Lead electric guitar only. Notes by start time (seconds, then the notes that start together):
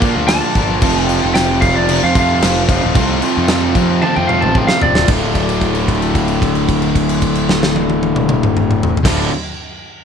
0.28 A5
1.04 G5
1.34 G5
1.61 F5
1.76 D5
2.04 F5
2.19 F5
4.03 A5
4.16 G5
4.27 F5
4.41 A5
4.57 G5
4.67 F5
4.82 D5